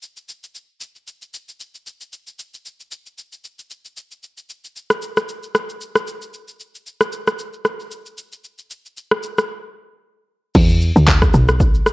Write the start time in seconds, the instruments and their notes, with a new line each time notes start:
0.02 shaker
0.17 shaker
0.29 shaker
0.44 shaker
0.55 shaker
0.81 shaker
0.96 shaker
1.07 shaker
1.22 shaker
1.34 shaker
1.49 shaker
1.60 shaker
1.75 shaker
1.86 shaker
2.01 shaker
2.13 shaker
2.27 shaker
2.39 shaker
2.54 shaker
2.66 shaker
2.80 shaker
2.91 shaker
3.06 shaker
3.18 shaker
3.32 shaker
3.44 shaker
3.59 shaker
3.71 shaker
3.85 shaker
3.97 shaker
4.11 shaker
4.23 shaker
4.38 shaker
4.50 shaker
4.65 shaker
4.76 shaker
4.90 cross-stick, shaker
5.02 shaker
5.17 cross-stick, shaker
5.29 shaker
5.43 shaker
5.55 cross-stick, shaker
5.70 shaker
5.81 shaker
5.96 cross-stick, shaker
6.07 shaker
6.22 shaker
6.34 shaker
6.48 shaker
6.60 shaker
6.75 shaker
6.87 shaker
7.01 cross-stick, shaker
7.12 shaker
7.27 cross-stick, shaker
7.39 shaker
7.54 shaker
7.65 cross-stick, shaker
7.80 shaker
7.92 shaker
8.06 shaker
8.18 shaker
8.32 shaker
8.44 shaker
8.59 shaker
8.71 shaker
8.86 shaker
8.97 shaker
9.11 cross-stick
9.23 shaker
9.38 cross-stick, shaker
10.55 log drum bass E2, kick, crash, shaker
10.69 shaker
10.81 shaker
10.96 log drum bass D2, shaker
11.07 kick, clap, shaker
11.22 kick, cross-stick, shaker
11.33 log drum bass B1, shaker
11.48 cross-stick, shaker
11.60 kick, shaker
11.74 shaker
11.86 cross-stick, shaker